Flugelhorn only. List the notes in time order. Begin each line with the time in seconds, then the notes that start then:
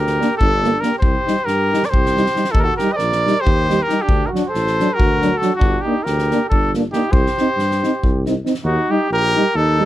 Already playing: G4
0.40 D4
0.84 G4
1.01 G4
1.45 G4
1.86 A#4
1.91 G4
2.52 D#4
2.63 F#4 G4
2.78 G4
2.95 A#4 C5
3.42 G4
3.84 G4
4.03 D4
4.26 F#4 G4
4.49 A4
4.96 F#4
5.38 F#4
5.58 D4
5.85 D#4
6.05 G4
6.50 D4
6.92 D#4
7.10 G4
8.64 D#4
8.90 D#4
9.10 G4
9.56 D#4